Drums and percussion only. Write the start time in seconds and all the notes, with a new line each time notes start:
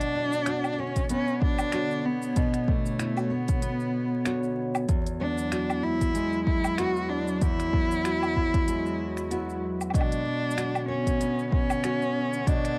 0.01 closed hi-hat, cabasa
0.32 cabasa
0.46 finger snap, closed hi-hat, cabasa
0.64 cabasa, low woodblock
0.96 kick, closed hi-hat, cabasa
1.09 closed hi-hat, cabasa
1.27 cabasa
1.42 kick
1.59 cabasa, low woodblock
1.72 finger snap, closed hi-hat, cabasa
1.91 cabasa
2.22 cabasa
2.36 kick, closed hi-hat, cabasa
2.54 finger snap, closed hi-hat, cabasa
2.68 kick
2.86 cabasa
2.99 finger snap, closed hi-hat, cabasa
3.17 cabasa, low woodblock
3.48 kick, closed hi-hat, cabasa
3.62 closed hi-hat, cabasa
3.80 cabasa
4.25 finger snap, closed hi-hat, cabasa
4.43 cabasa
4.75 cabasa, low woodblock
4.89 kick, closed hi-hat, cabasa
5.07 closed hi-hat, cabasa
5.38 cabasa
5.52 finger snap, closed hi-hat, cabasa
5.70 cabasa, low woodblock
6.01 kick, closed hi-hat, cabasa
6.15 closed hi-hat, cabasa
6.33 cabasa
6.47 kick
6.64 cabasa, low woodblock
6.78 finger snap, closed hi-hat, cabasa
6.96 cabasa
7.28 cabasa
7.42 kick, closed hi-hat, cabasa
7.60 finger snap, closed hi-hat, cabasa
7.73 kick
7.91 cabasa
8.05 finger snap, closed hi-hat, cabasa
8.23 cabasa, low woodblock
8.36 kick
8.54 kick, closed hi-hat
8.68 closed hi-hat, cabasa
8.86 cabasa
9.17 finger snap, cabasa
9.31 closed hi-hat, cabasa
9.49 cabasa
9.81 cabasa, low woodblock
9.90 low woodblock
9.94 kick, closed hi-hat, cabasa
10.01 low woodblock
10.12 closed hi-hat, cabasa
10.51 cabasa
10.58 finger snap, closed hi-hat, cabasa
10.75 cabasa, low woodblock
11.07 kick, closed hi-hat, cabasa
11.21 closed hi-hat, cabasa
11.39 cabasa
11.52 kick
11.70 cabasa, low woodblock
11.84 finger snap, closed hi-hat, cabasa
12.02 cabasa
12.33 cabasa
12.47 kick, closed hi-hat, cabasa
12.65 finger snap, closed hi-hat, cabasa